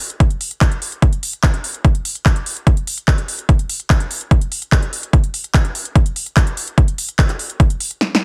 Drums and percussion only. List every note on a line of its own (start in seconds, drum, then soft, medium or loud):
0.10 closed hi-hat medium
0.20 kick loud
0.20 closed hi-hat medium
0.30 closed hi-hat soft
0.41 open hi-hat loud
0.51 closed hi-hat medium
0.61 kick loud
0.61 clap loud
0.61 closed hi-hat medium
0.72 closed hi-hat medium
0.82 open hi-hat medium
0.92 closed hi-hat medium
1.02 kick loud
1.02 closed hi-hat medium
1.13 closed hi-hat medium
1.23 open hi-hat loud
1.33 closed hi-hat soft
1.43 kick loud
1.43 clap loud
1.43 closed hi-hat medium
1.54 closed hi-hat soft
1.64 open hi-hat medium
1.74 closed hi-hat medium
1.85 kick loud
1.85 closed hi-hat medium
1.95 closed hi-hat medium
2.05 open hi-hat loud
2.15 closed hi-hat soft
2.26 kick loud
2.26 clap loud
2.26 closed hi-hat medium
2.36 closed hi-hat soft
2.46 open hi-hat medium
2.56 closed hi-hat soft
2.67 kick loud
2.67 closed hi-hat medium
2.77 closed hi-hat medium
2.87 open hi-hat loud
2.98 closed hi-hat medium
3.08 kick loud
3.08 clap loud
3.08 closed hi-hat medium
3.18 closed hi-hat medium
3.28 open hi-hat medium
3.39 closed hi-hat medium
3.49 kick loud
3.49 closed hi-hat medium
3.59 closed hi-hat medium
3.69 open hi-hat loud
3.80 closed hi-hat medium
3.90 kick loud
3.90 clap loud
3.90 closed hi-hat medium
4.00 closed hi-hat medium
4.11 open hi-hat medium
4.21 closed hi-hat medium
4.31 kick loud
4.31 closed hi-hat medium
4.41 closed hi-hat medium
4.52 open hi-hat loud
4.62 closed hi-hat medium
4.72 kick loud
4.72 clap loud
4.72 closed hi-hat medium
4.83 closed hi-hat medium
4.93 open hi-hat medium
5.03 closed hi-hat medium
5.13 kick loud
5.13 closed hi-hat medium
5.24 closed hi-hat medium
5.34 open hi-hat loud
5.44 closed hi-hat medium
5.54 kick loud
5.54 clap loud
5.54 closed hi-hat medium
5.65 closed hi-hat medium
5.75 open hi-hat medium
5.85 closed hi-hat medium
5.95 kick loud
5.95 closed hi-hat medium
6.06 closed hi-hat medium
6.16 open hi-hat loud
6.26 closed hi-hat medium
6.37 kick loud
6.37 clap loud
6.37 closed hi-hat medium
6.47 closed hi-hat medium
6.57 open hi-hat medium
6.67 closed hi-hat medium
6.78 kick loud
6.78 closed hi-hat medium
6.88 closed hi-hat medium
6.98 open hi-hat loud
7.09 closed hi-hat medium
7.19 kick loud
7.19 clap loud
7.19 closed hi-hat medium
7.29 clap soft
7.29 closed hi-hat medium
7.39 open hi-hat medium
7.50 closed hi-hat medium
7.60 kick loud
7.60 closed hi-hat medium
7.70 closed hi-hat medium
7.80 open hi-hat loud
7.91 closed hi-hat medium
8.01 snare medium
8.15 snare medium